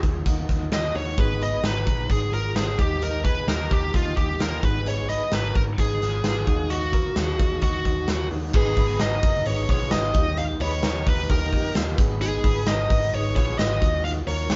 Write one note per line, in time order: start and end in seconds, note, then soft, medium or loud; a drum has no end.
0.00 0.22 D#2 medium
0.00 0.23 F4 medium
0.00 0.23 G#4 medium
0.00 0.26 A#4 soft
0.00 kick medium
0.00 closed hi-hat medium
0.05 0.25 D#4 soft
0.05 0.26 F4 soft
0.25 0.45 D#2 medium
0.25 0.72 F#3 medium
0.25 0.72 D#4 medium
0.25 0.48 D#4 medium
0.25 0.72 F4 medium
0.25 0.47 F#4 medium
0.25 0.72 A#4 medium
0.25 kick medium
0.25 closed hi-hat medium
0.49 0.68 D#2 medium
0.49 0.71 D#4 medium
0.49 0.72 F#4 medium
0.49 kick medium
0.49 snare soft
0.49 closed hi-hat medium
0.72 0.90 D#2 medium
0.72 0.95 D#3 medium
0.72 0.95 F#3 medium
0.72 0.95 A#3 medium
0.72 0.95 D#4 medium
0.72 0.95 F4 medium
0.72 0.94 F4 medium
0.72 0.92 A#4 medium
0.72 0.96 D#5 loud
0.72 snare loud
0.72 closed hi-hat loud
0.93 1.13 D#2 medium
0.93 1.17 D#4 soft
0.93 1.18 D#4 soft
0.93 1.18 F4 soft
0.93 1.18 F#4 medium
0.93 1.17 A#4 soft
0.93 1.19 C#5 medium
0.93 open hi-hat medium
1.17 1.56 G#1 loud
1.17 1.40 G#2 medium
1.17 1.41 D#3 medium
1.17 1.41 F#3 medium
1.17 2.75 B3 medium
1.17 1.41 B3 medium
1.17 1.41 D#4 medium
1.17 1.40 D#4 medium
1.17 2.75 F#4 medium
1.17 2.76 G#4 medium
1.17 1.41 G#4 medium
1.17 1.38 G#4 medium
1.17 1.42 B4 medium
1.17 kick loud
1.17 closed hi-hat medium
1.39 1.62 F#3 soft
1.39 1.63 B3 soft
1.39 1.63 D#4 soft
1.39 1.63 G#4 soft
1.39 1.64 G#4 medium
1.39 1.64 B4 medium
1.39 1.63 D#5 loud
1.39 closed hi-hat medium
1.62 1.87 G#1 loud
1.62 1.86 G#2 medium
1.62 1.86 D#3 medium
1.62 1.87 F#3 medium
1.62 1.87 B3 medium
1.62 1.85 D#4 medium
1.62 2.07 F#4 medium
1.62 1.85 G#4 medium
1.62 2.10 B4 medium
1.62 2.07 A#5 medium
1.62 snare loud
1.62 closed hi-hat medium
1.86 2.06 A#1 medium
1.86 2.07 F#3 soft
1.86 2.08 B3 soft
1.86 2.10 D#4 soft
1.86 2.09 G#4 soft
1.86 kick medium
1.86 closed hi-hat medium
2.08 2.29 G#1 loud
2.08 2.55 F#3 medium
2.08 2.55 B3 medium
2.08 2.33 D#4 medium
2.08 2.57 D#4 medium
2.08 2.31 G#4 medium
2.08 2.33 G#4 medium
2.08 2.56 G#4 medium
2.08 kick medium
2.08 closed hi-hat medium
2.32 2.51 G#1 medium
2.32 2.54 F4 medium
2.32 2.55 G#4 medium
2.32 2.56 A#4 loud
2.32 closed hi-hat medium
2.55 2.74 G#1 medium
2.55 2.79 G#2 medium
2.55 2.79 D#3 medium
2.55 2.79 F#3 medium
2.55 2.78 B3 medium
2.55 2.79 B3 medium
2.55 2.79 D#4 medium
2.55 2.79 F4 medium
2.55 2.80 G#4 medium
2.55 2.78 G#4 medium
2.55 snare loud
2.55 closed hi-hat loud
2.78 3.35 D#2 medium
2.78 3.01 A#3 soft
2.78 4.59 D#4 medium
2.78 3.01 D#4 medium
2.78 3.01 D#4 soft
2.78 4.59 F4 soft
2.78 3.00 G4 medium
2.78 3.02 G4 medium
2.78 4.60 G4 medium
2.78 3.02 G4 soft
2.78 3.02 D#5 medium
2.78 kick loud
2.78 closed hi-hat medium
3.01 3.25 D#3 medium
3.01 3.25 F3 medium
3.01 3.25 A#3 medium
3.01 3.25 D#4 medium
3.01 3.25 G4 medium
3.01 3.24 G4 medium
3.01 3.25 A#4 loud
3.01 3.23 D#5 medium
3.01 closed hi-hat medium
3.24 3.47 A#3 soft
3.24 3.47 D#4 soft
3.24 3.48 G4 soft
3.24 3.48 G#4 medium
3.24 3.48 B4 medium
3.24 3.46 B4 medium
3.24 3.48 D#5 soft
3.24 kick medium
3.24 closed hi-hat medium
3.47 3.66 D#2 loud
3.47 3.71 D#3 medium
3.47 3.71 F3 medium
3.47 3.71 A#3 medium
3.47 3.70 D#4 medium
3.47 3.92 G4 medium
3.47 3.69 G4 medium
3.47 3.91 A#4 medium
3.47 3.72 A#4 medium
3.47 3.69 D#5 medium
3.47 snare loud
3.47 closed hi-hat medium
3.70 3.90 D#2 medium
3.70 3.92 A#3 soft
3.70 3.94 D#4 soft
3.70 3.94 G4 soft
3.70 3.93 G4 medium
3.70 3.93 D#5 soft
3.70 kick medium
3.70 closed hi-hat medium
3.94 4.13 D#2 medium
3.94 4.39 A#3 medium
3.94 4.17 D#4 medium
3.94 4.40 D#4 medium
3.94 4.17 F4 medium
3.94 4.16 G4 medium
3.94 4.40 G4 medium
3.94 4.41 D#5 medium
3.94 kick medium
3.94 closed hi-hat medium
4.17 4.36 D#2 medium
4.17 4.40 D#4 medium
4.17 4.40 G4 medium
4.17 4.41 G4 medium
4.17 kick medium
4.17 closed hi-hat medium
4.40 4.59 D#2 medium
4.40 4.63 D#3 medium
4.40 4.63 F3 medium
4.40 4.63 A#3 medium
4.40 4.63 A#3 soft
4.40 4.62 D#4 medium
4.40 4.63 F4 medium
4.40 4.63 G4 medium
4.40 4.64 A#4 medium
4.40 4.62 D#5 medium
4.40 snare loud
4.40 closed hi-hat loud
4.63 5.20 G#1 medium
4.63 4.85 F#3 soft
4.63 6.43 B3 medium
4.63 4.86 B3 soft
4.63 4.86 D#4 soft
4.63 6.43 F#4 medium
4.63 4.86 F#4 medium
4.63 6.44 G#4 medium
4.63 4.86 B4 soft
4.63 4.88 B4 medium
4.63 kick medium
4.63 closed hi-hat medium
4.86 5.09 G#2 medium
4.86 5.09 D#3 medium
4.86 5.09 F#3 medium
4.86 5.10 B3 medium
4.86 5.10 D#4 medium
4.86 5.09 D#4 medium
4.86 5.09 G#4 medium
4.86 5.08 B4 medium
4.86 5.09 C#5 medium
4.86 closed hi-hat medium
5.09 5.32 F#3 soft
5.09 5.32 B3 soft
5.09 5.33 D#4 soft
5.09 5.32 G#4 medium
5.09 5.32 B4 soft
5.09 5.32 B4 medium
5.09 5.33 D#5 loud
5.09 closed hi-hat medium
5.32 5.51 G#1 loud
5.32 5.55 G#2 medium
5.32 5.55 D#3 medium
5.32 5.55 F#3 medium
5.32 5.56 B3 medium
5.32 5.55 D#4 medium
5.32 5.76 F#4 medium
5.32 5.76 A#4 medium
5.32 5.56 B4 medium
5.32 5.55 B4 medium
5.32 snare loud
5.32 closed hi-hat medium
5.55 5.74 G#1 medium
5.55 5.77 F#3 soft
5.55 5.78 B3 soft
5.55 5.79 D#4 soft
5.55 5.62 A#4 medium
5.55 5.79 B4 soft
5.55 kick medium
5.55 closed hi-hat medium
5.78 5.97 G#1 medium
5.78 6.25 F#3 medium
5.78 6.25 B3 medium
5.78 6.02 D#4 medium
5.78 6.26 D#4 medium
5.78 6.01 G#4 medium
5.78 6.74 G#4 medium
5.78 6.26 B4 medium
5.78 kick medium
5.78 closed hi-hat loud
6.01 6.20 G#1 medium
6.01 6.24 F4 medium
6.01 6.25 G#4 medium
6.01 snare soft
6.01 closed hi-hat medium
6.24 6.43 G#1 medium
6.24 6.48 G#2 medium
6.24 6.48 D#3 medium
6.24 6.48 F#3 medium
6.24 6.47 B3 medium
6.24 6.48 B3 medium
6.24 6.48 D#4 medium
6.24 6.48 F4 medium
6.24 6.47 B4 medium
6.24 snare loud
6.24 closed hi-hat medium
6.47 7.04 D#2 medium
6.47 8.28 D#4 medium
6.47 6.71 D#4 soft
6.47 6.70 D#4 soft
6.47 6.71 F4 soft
6.47 6.70 F#4 medium
6.47 8.28 F#4 medium
6.47 6.70 A#4 medium
6.47 8.28 F5 medium
6.47 kick medium
6.47 closed hi-hat medium
6.70 6.93 D#3 medium
6.70 6.93 F#3 medium
6.70 6.94 D#4 medium
6.70 6.93 F4 medium
6.70 7.62 F#4 medium
6.70 6.93 F#4 medium
6.70 6.92 A#4 medium
6.70 closed hi-hat medium
6.93 7.16 D#4 soft
6.93 7.16 F4 soft
6.93 7.17 F#4 medium
6.93 7.16 A#4 soft
6.93 7.17 A#4 medium
6.93 kick medium
6.93 closed hi-hat medium
7.16 7.35 D#2 medium
7.16 7.39 D#3 medium
7.16 7.39 F#3 medium
7.16 7.40 D#4 medium
7.16 7.39 F4 medium
7.16 7.60 G#4 medium
7.16 7.38 A#4 medium
7.16 7.60 F5 medium
7.16 snare loud
7.16 closed hi-hat loud
7.39 7.58 D#2 medium
7.39 7.62 D#4 soft
7.39 7.63 F4 soft
7.39 7.62 A#4 medium
7.39 kick loud
7.39 closed hi-hat medium
7.61 7.81 D#2 medium
7.61 8.08 F#3 medium
7.61 8.09 D#4 medium
7.61 7.85 D#4 medium
7.61 7.84 F#4 medium
7.61 8.28 F#4 medium
7.61 8.09 A#4 medium
7.61 kick medium
7.61 closed hi-hat medium
7.85 8.04 D#2 medium
7.85 8.09 D#4 medium
7.85 8.09 F#4 medium
7.85 kick medium
7.85 closed hi-hat medium
8.08 8.27 D#2 medium
8.08 8.31 D#3 medium
8.08 8.31 F#3 medium
8.08 8.32 A#3 medium
8.08 8.32 D#4 medium
8.08 8.32 F4 medium
8.08 8.31 F4 medium
8.08 8.30 A#4 medium
8.08 snare loud
8.08 closed hi-hat medium
8.31 8.50 D#2 loud
8.31 8.55 D#4 soft
8.31 8.55 F4 soft
8.31 8.54 F#4 medium
8.31 8.54 A#4 medium
8.31 open hi-hat medium
8.53 8.73 G#1 loud
8.53 8.77 G#2 medium
8.53 8.77 D#3 medium
8.53 8.78 F#3 medium
8.53 10.12 B3 medium
8.53 8.78 B3 medium
8.53 8.78 D#4 medium
8.53 8.77 D#4 medium
8.53 10.12 F#4 medium
8.53 8.77 G#4 loud
8.53 10.12 G#4 medium
8.53 9.02 G#4 medium
8.53 8.75 B4 medium
8.53 kick loud
8.53 crash medium
8.76 8.96 G#1 medium
8.76 8.99 F#3 soft
8.76 9.00 B3 soft
8.76 9.01 D#4 soft
8.76 9.01 G#4 medium
8.76 9.00 B4 soft
8.76 9.00 B4 medium
8.76 kick medium
8.76 hi-hat pedal medium
8.76 open hi-hat medium
9.00 9.20 G#1 loud
9.00 9.23 G#2 medium
9.00 9.23 D#3 medium
9.00 9.23 F#3 medium
9.00 9.23 B3 medium
9.00 9.23 D#4 medium
9.00 9.44 F#4 medium
9.00 9.44 A#4 medium
9.00 9.22 B4 medium
9.00 9.47 D#5 medium
9.00 snare loud
9.00 hi-hat pedal medium
9.00 open hi-hat medium
9.22 9.42 F#1 medium
9.22 9.45 F#3 soft
9.22 9.46 B3 soft
9.22 9.46 B4 soft
9.22 kick loud
9.22 hi-hat pedal medium
9.22 open hi-hat medium
9.45 9.65 G#1 loud
9.45 9.69 F#3 medium
9.45 9.70 B3 medium
9.45 9.70 D#4 medium
9.45 9.69 D#4 medium
9.45 9.68 G#4 medium
9.45 9.69 C#5 loud
9.45 hi-hat pedal medium
9.45 open hi-hat medium
9.50 9.68 B4 medium
9.68 9.93 B1 medium
9.68 9.92 F#3 soft
9.68 9.93 B3 soft
9.68 9.93 D#4 soft
9.68 9.91 F4 medium
9.68 9.92 G#4 medium
9.68 9.92 B4 medium
9.68 9.91 C#5 loud
9.68 kick medium
9.68 snare soft
9.68 hi-hat pedal medium
9.68 open hi-hat medium
9.91 10.11 G#1 medium
9.91 10.15 G#2 medium
9.91 10.15 D#3 medium
9.91 10.16 F#3 medium
9.91 10.15 B3 medium
9.91 10.16 B3 medium
9.91 10.15 D#4 medium
9.91 10.15 F4 medium
9.91 10.14 B4 medium
9.91 10.39 D#5 loud
9.91 snare loud
9.91 hi-hat pedal medium
9.91 open hi-hat loud
10.14 10.53 D#2 medium
10.14 10.84 D#3 medium
10.14 10.62 F3 medium
10.14 10.62 A#3 medium
10.14 11.50 D#4 medium
10.14 10.62 D#4 medium
10.14 10.38 D#4 medium
10.14 11.50 F4 medium
10.14 10.37 G4 medium
10.14 11.50 G4 medium
10.14 10.61 G4 medium
10.14 10.60 D#5 medium
10.14 kick loud
10.14 hi-hat pedal medium
10.14 open hi-hat medium
10.37 10.61 D#4 medium
10.37 10.61 G4 medium
10.37 10.44 F5 loud
10.37 hi-hat pedal medium
10.37 open hi-hat medium
10.60 10.79 D#2 medium
10.60 10.84 A#3 soft
10.60 10.84 D#4 soft
10.60 10.84 G4 soft
10.60 10.84 G#4 medium
10.60 10.84 B4 medium
10.60 11.08 C#5 loud
10.60 10.84 D#5 medium
10.60 hi-hat pedal medium
10.60 open hi-hat medium
10.83 11.03 D#2 loud
10.83 11.07 D#3 medium
10.83 11.07 F3 medium
10.83 11.07 A#3 medium
10.83 11.07 D#4 medium
10.83 11.27 G4 medium
10.83 11.06 G4 medium
10.83 11.27 A#4 medium
10.83 11.05 D#5 medium
10.83 snare loud
10.83 hi-hat pedal medium
10.83 open hi-hat loud
11.06 11.26 D#2 medium
11.06 11.28 A#3 soft
11.06 11.28 D#4 soft
11.06 11.30 G4 soft
11.06 11.30 B4 medium
11.06 11.30 D#5 medium
11.06 kick medium
11.06 hi-hat pedal medium
11.06 open hi-hat medium
11.29 11.53 D#2 loud
11.29 11.52 A#3 medium
11.29 11.52 D#4 medium
11.29 11.53 D#4 medium
11.29 11.52 G4 medium
11.29 11.51 G4 medium
11.29 11.73 A#4 medium
11.29 11.50 D#5 medium
11.29 kick medium
11.29 hi-hat pedal medium
11.29 open hi-hat loud
11.51 11.72 F2 loud
11.51 11.75 A#3 soft
11.51 11.99 D#4 medium
11.51 11.75 D#4 medium
11.51 11.76 D#4 medium
11.51 11.99 F4 soft
11.51 11.76 G4 medium
11.51 11.99 G4 medium
11.51 11.75 D#5 medium
11.51 kick medium
11.51 hi-hat pedal medium
11.51 open hi-hat medium
11.75 11.95 D#2 loud
11.75 11.97 D#3 medium
11.75 11.98 F3 medium
11.75 11.98 A#3 medium
11.75 11.99 A#3 medium
11.75 11.96 D#4 medium
11.75 11.99 F4 medium
11.75 11.96 G4 medium
11.75 11.96 D#5 medium
11.75 snare loud
11.75 hi-hat pedal medium
11.75 open hi-hat loud
11.96 12.36 G#1 loud
11.96 12.45 G#2 medium
11.96 12.65 D#3 medium
11.96 12.46 F#3 medium
11.96 12.43 B3 medium
11.96 13.79 B3 medium
11.96 12.44 D#4 medium
11.96 12.22 D#4 medium
11.96 13.79 F#4 medium
11.96 13.79 G#4 medium
11.96 12.41 B4 medium
11.96 kick loud
11.96 hi-hat pedal medium
11.96 open hi-hat medium
12.21 12.45 D#4 medium
12.21 12.69 G#4 medium
12.21 12.45 G#4 medium
12.21 hi-hat pedal medium
12.21 open hi-hat medium
12.43 12.63 G#1 medium
12.43 12.65 F#3 soft
12.43 12.65 B3 soft
12.43 12.66 D#4 soft
12.43 12.68 G#4 medium
12.43 12.66 B4 soft
12.43 12.67 B4 medium
12.43 kick loud
12.43 hi-hat pedal medium
12.43 open hi-hat medium
12.65 12.86 G#1 medium
12.65 12.89 G#2 medium
12.65 12.89 D#3 medium
12.65 12.90 F#3 medium
12.65 12.89 B3 medium
12.65 12.88 D#4 medium
12.65 13.11 F#4 medium
12.65 13.10 A#4 medium
12.65 12.87 B4 medium
12.65 13.14 D#5 loud
12.65 snare loud
12.65 hi-hat pedal medium
12.65 open hi-hat medium
12.88 13.09 G#1 medium
12.88 13.11 F#3 soft
12.88 13.13 B3 soft
12.88 13.13 D#4 medium
12.88 13.12 B4 medium
12.88 kick loud
12.88 hi-hat pedal medium
12.88 open hi-hat medium
13.12 13.32 G#1 loud
13.12 13.36 F#3 medium
13.12 13.35 B3 medium
13.12 13.37 D#4 medium
13.12 13.34 D#4 medium
13.12 13.35 G#4 medium
13.12 13.33 B4 medium
13.12 13.35 C#5 medium
13.12 hi-hat pedal medium
13.12 open hi-hat medium
13.34 13.55 A#1 medium
13.34 13.58 F#3 soft
13.34 13.58 B3 soft
13.34 13.58 D#4 medium
13.34 13.58 F4 medium
13.34 13.59 G#4 medium
13.34 13.58 B4 medium
13.34 13.58 C#5 loud
13.34 kick medium
13.34 snare soft
13.34 hi-hat pedal medium
13.34 open hi-hat medium
13.58 13.78 G#1 medium
13.58 13.82 G#2 medium
13.58 13.81 D#3 medium
13.58 13.80 F#3 medium
13.58 13.81 B3 medium
13.58 13.82 B3 medium
13.58 13.80 D#4 medium
13.58 13.82 F4 medium
13.58 13.79 B4 medium
13.58 14.06 D#5 medium
13.58 snare loud
13.58 hi-hat pedal medium
13.58 open hi-hat loud
13.80 14.20 D#2 loud
13.80 14.31 D#3 soft
13.80 14.31 F#3 medium
13.80 14.29 D#4 medium
13.80 14.56 D#4 medium
13.80 14.04 D#4 medium
13.80 14.27 F4 medium
13.80 14.56 F4 medium
13.80 14.56 F#4 medium
13.80 14.03 F#4 medium
13.80 14.25 A#4 medium
13.80 kick medium
13.80 hi-hat pedal medium
13.80 open hi-hat medium
14.04 14.28 D#4 medium
14.04 14.27 F#4 medium
14.04 14.10 F5 loud
14.04 hi-hat pedal medium
14.04 open hi-hat medium
14.27 14.46 D#2 medium
14.27 14.50 D#4 soft
14.27 14.50 F4 soft
14.27 14.51 F#4 medium
14.27 14.50 A#4 medium
14.27 14.56 C#5 loud
14.27 hi-hat pedal medium
14.27 open hi-hat medium
14.49 14.56 D#2 loud
14.49 14.56 D#3 medium
14.49 14.56 F#3 medium
14.49 14.56 D#4 medium
14.49 14.56 F4 medium
14.49 14.56 G#4 medium
14.49 14.56 A#4 medium
14.49 snare loud
14.49 hi-hat pedal medium
14.49 open hi-hat loud